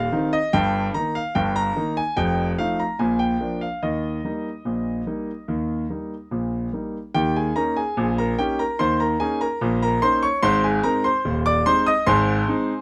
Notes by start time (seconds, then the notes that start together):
Already playing: F5
0.12 D#3 C4 D#4
0.33 D#5
0.53 G1 G2 G5
0.94 D#3 A#3 D#4 A#5
1.15 F5
1.35 G1 G2 G5
1.56 A#5
1.76 D#3 A#3 D#4
1.97 G#5
2.17 F1 F2 G5
2.58 F3 A3 D#4 F5
2.79 A#5
2.99 A#1 A#2 G#5
3.19 G5
3.41 F3 A#3 D4
3.61 F5
3.83 D#2 D#3 D#5
4.25 G3 A#3 D#4
4.65 A#1 A#2
5.07 G3 A#3 D#4
5.48 D#2 D#3
5.90 G3 A#3 D#4
6.31 A#1 A#2
6.73 G3 A#3 D#4
7.14 D#2 D#3 G4 G5
7.36 G#4 G#5
7.56 A#3 C#4 D#4 A#4 A#5
7.77 G#4 G#5
7.97 A#1 A#2
8.18 A#4 A#5
8.39 A#3 C#4 D#4 G4 G5
8.59 A#4 A#5
8.79 D#2 D#3 C5 C6
9.00 A#4 A#5
9.20 A#3 C#4 D#4 G#4 G#5
9.41 A#4 A#5
9.61 A#1 A#2
9.82 A#4 A#5
10.02 A#3 C#4 D#4 C5 C6
10.23 C#5 C#6
10.43 G#1 G#2 C5 C6
10.64 G#4 G#5
10.83 G#3 C4 D#4 A#4 A#5
11.04 C5 C6
11.25 D#1 D#2
11.46 D5 D6
11.66 G#3 C4 D#4 C5 C6
11.86 D#5 D#6
12.07 G#1 G#2 C5 G#5 C6
12.48 G#3 C4 D#4